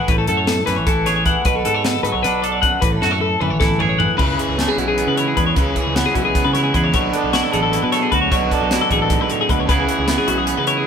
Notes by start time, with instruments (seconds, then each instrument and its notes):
0.08 picked electric bass A1, clean electric guitar A2 B4, kick, closed hi-hat
0.18 clean electric guitar A4
0.27 picked electric bass F#2, clean electric guitar A4, closed hi-hat
0.37 clean electric guitar C#5
0.47 clean electric guitar A4, snare, closed hi-hat
0.66 picked electric bass F#2, clean electric guitar E3 B4, snare, closed hi-hat
0.76 picked electric bass A1, clean electric guitar C#5
0.87 picked electric bass A1, clean electric guitar E4 A4, kick, closed hi-hat
1.06 clean electric guitar G#4 C#5, snare, closed hi-hat
1.16 clean electric guitar C#5
1.26 clean electric guitar E3 F#5, kick, closed hi-hat
1.45 picked electric bass B1, clean electric guitar B2 B4, kick, closed hi-hat
1.56 clean electric guitar A4
1.65 picked electric bass G#2, clean electric guitar A4, closed hi-hat
1.74 clean electric guitar C#5
1.84 clean electric guitar A4, snare, closed hi-hat
2.03 picked electric bass G#2, clean electric guitar F#3 B4, closed hi-hat
2.12 picked electric bass B1, clean electric guitar C#5
2.23 picked electric bass B1, clean electric guitar D4 B4, snare, closed hi-hat
2.42 clean electric guitar A4 D5, closed hi-hat
2.52 clean electric guitar D5
2.62 clean electric guitar F#2 F#5, kick, closed hi-hat
2.81 picked electric bass A1, clean electric guitar A2 B4, kick, closed hi-hat
2.92 clean electric guitar A4
3.02 picked electric bass F#2, clean electric guitar F#4 A4, snare
3.11 clean electric guitar A4 C#5
3.21 clean electric guitar A4
3.41 picked electric bass F#2, clean electric guitar E3 B4, mid tom
3.50 picked electric bass A1, clean electric guitar C#5
3.60 picked electric bass A1, clean electric guitar E4 A4, kick, snare
3.79 clean electric guitar G#4 C#5, floor tom
3.89 clean electric guitar C#5
3.98 clean electric guitar E3 F#5, floor tom
4.17 picked electric bass C#2, overdriven electric guitar C#3 E3 G#3 C#4, clean electric guitar C#3 B4, kick, crash
4.37 clean electric guitar E3 G#4, closed hi-hat
4.48 picked electric bass C#2
4.58 clean electric guitar A3 E4, snare, closed hi-hat
4.68 clean electric guitar B3 G#4
4.78 picked electric bass B1, clean electric guitar E4 F#4, closed hi-hat
4.88 clean electric guitar G#4
4.98 clean electric guitar B3, closed hi-hat
5.07 picked electric bass C#3, clean electric guitar B4
5.17 clean electric guitar E4 C#5, closed hi-hat
5.28 clean electric guitar G#4
5.37 picked electric bass E2, clean electric guitar G#4 B4, kick, closed hi-hat
5.47 clean electric guitar C#5
5.56 picked electric bass C#2, clean electric guitar C#3 B4, overdriven electric guitar C#3 E3 G#3 C#4, kick, closed hi-hat
5.75 clean electric guitar E3 G#4, kick, closed hi-hat
5.86 picked electric bass C#2
5.95 clean electric guitar B3 E4, snare, closed hi-hat
6.06 clean electric guitar G#4
6.14 picked electric bass B1, clean electric guitar E4 F#4, kick, closed hi-hat
6.25 clean electric guitar G#4
6.35 clean electric guitar B3, kick, snare, closed hi-hat
6.44 picked electric bass C#3, clean electric guitar B4
6.54 clean electric guitar E4 C#5, snare, closed hi-hat
6.63 clean electric guitar G#4
6.74 picked electric bass E2, clean electric guitar G#4 B4, kick, closed hi-hat
6.84 clean electric guitar C#5
6.92 picked electric bass B1, overdriven electric guitar B2 F#3 B3, clean electric guitar B2 C#5, kick, closed hi-hat
6.96 overdriven electric guitar D4
7.13 clean electric guitar D4 A4, closed hi-hat
7.24 picked electric bass B1
7.33 clean electric guitar E4 F#4, snare, closed hi-hat
7.43 clean electric guitar A4
7.53 picked electric bass A1, clean electric guitar G#4 A4, closed hi-hat
7.63 clean electric guitar A4
7.73 clean electric guitar E4, closed hi-hat
7.82 picked electric bass B2, clean electric guitar B4
7.92 clean electric guitar A4 C#5, snare, closed hi-hat
8.02 clean electric guitar G#4
8.12 picked electric bass D2, clean electric guitar F#4 B4, kick, closed hi-hat
8.21 clean electric guitar C#5
8.30 picked electric bass B1, overdriven electric guitar B2 F#3 B3 D4, clean electric guitar B2 C#5, kick, closed hi-hat
8.51 clean electric guitar D4 A4, kick, closed hi-hat
8.62 picked electric bass B1
8.71 clean electric guitar E4 F#4, snare, closed hi-hat
8.81 clean electric guitar A4
8.91 picked electric bass A1, clean electric guitar G#4 A4, kick, closed hi-hat
9.02 clean electric guitar A4
9.10 clean electric guitar G#2, kick, closed hi-hat
9.20 picked electric bass B2, clean electric guitar B4
9.29 clean electric guitar A2 C#5, closed hi-hat
9.41 clean electric guitar G#4
9.49 picked electric bass D2, clean electric guitar B2 B4, kick, closed hi-hat
9.60 clean electric guitar C#5
9.67 picked electric bass C#2, overdriven electric guitar C#3 E3 G#3 C#4, clean electric guitar C#3 E3 B3 E4 B4, kick, closed hi-hat
9.71 clean electric guitar G#4
9.88 clean electric guitar E3 G#4, closed hi-hat
9.99 picked electric bass C#2
10.08 clean electric guitar B3 E4, snare, closed hi-hat
10.18 clean electric guitar G#4
10.28 picked electric bass B1, clean electric guitar E4 F#4, closed hi-hat
10.38 clean electric guitar G#4
10.47 clean electric guitar B3, closed hi-hat
10.57 picked electric bass C#3, clean electric guitar B4
10.67 clean electric guitar E4 C#5, closed hi-hat
10.77 clean electric guitar G#4